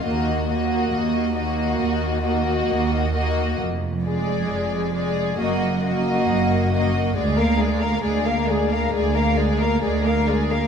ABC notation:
X:1
M:4/4
L:1/16
Q:1/4=67
K:Ebdor
V:1 name="Violin section"
e2 e4 e4 e4 e2 | z2 =d4 d2 e2 e4 e2 | [K:Bbphr] =d f d f d f d f d f d f d f d f |]
V:2 name="Violin section"
G2 G4 G4 G4 G2 | z2 A4 A2 G2 G4 G2 | [K:Bbphr] A B A B A B A B A B A B A B A B |]
V:3 name="Viola section"
B,2 B,4 B,4 B,4 B,2 | z2 A,4 A,2 B,2 B,4 B,2 | [K:Bbphr] A, B, A, B, A, B, A, B, A, B, A, B, A, B, A, B, |]
V:4 name="Cello section" clef=bass
E,,4 E,,4 E,,4 E,,4 | F,,4 F,,4 G,,4 G,,4 | [K:Bbphr] =D,,4 D,,4 D,,4 D,,4 |]
V:5 name="Double bass section" clef=bass
E,,4 E,,4 E,,4 E,,4 | F,,,4 F,,,4 G,,,4 G,,,4 | [K:Bbphr] =D,,4 D,,4 D,,4 D,,4 |]